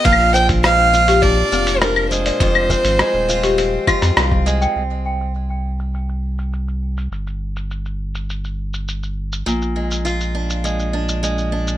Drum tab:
HH |o-----o-o-----o-o-----o-o-----o-|o-----o-o-----o-o-----o-o-------|--------------------------------|--------------------------------|
SH |x---x-x-x---x-x-x---x-x-x---x-x-|x---x-x-x---x-x-x---x-x-x---x-x-|x-x---x-x-x---x-x-x---x-x-x---x-|x-x---x-x-x---x-x-x---x-x-x---x-|
CL |-x------------------------x-----|--x-----------------x-----------|--------------------------------|--------------------------------|
SD |--------r---------------r-------|--------r-------------r-r-------|--------------------------------|--------------------------------|
BD |o-----o---------o---------------|o---o---------------o-----o-----|--------------------------------|--------------------------------|

HH |--------------------------------|
SH |x-x---x-x-x---x-x-x---x-x-x---x-|
CL |--------------------------------|
SD |--------------------------------|
BD |--------------------------------|